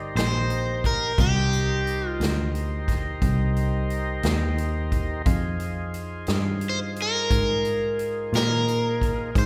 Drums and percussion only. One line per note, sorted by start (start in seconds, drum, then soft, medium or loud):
0.17 snare loud
0.17 closed hi-hat medium
0.50 closed hi-hat medium
0.84 kick medium
0.84 closed hi-hat medium
1.18 kick loud
1.18 closed hi-hat medium
1.53 closed hi-hat soft
1.87 closed hi-hat medium
2.21 snare medium
2.21 closed hi-hat medium
2.55 closed hi-hat medium
2.88 kick medium
2.88 snare soft
2.88 closed hi-hat medium
3.22 kick medium
3.22 closed hi-hat medium
3.56 closed hi-hat soft
3.90 closed hi-hat soft
4.23 snare loud
4.23 closed hi-hat medium
4.58 closed hi-hat medium
4.92 kick medium
4.92 closed hi-hat medium
5.26 kick loud
5.26 closed hi-hat medium
5.60 closed hi-hat medium
5.94 closed hi-hat medium
6.27 snare loud
6.27 closed hi-hat medium
6.61 closed hi-hat medium
6.96 closed hi-hat medium
7.30 kick medium
7.30 closed hi-hat medium
7.65 closed hi-hat medium
7.99 closed hi-hat soft
8.34 snare loud
8.34 closed hi-hat medium
8.68 closed hi-hat soft
9.01 kick medium
9.01 closed hi-hat medium
9.35 kick medium
9.35 closed hi-hat medium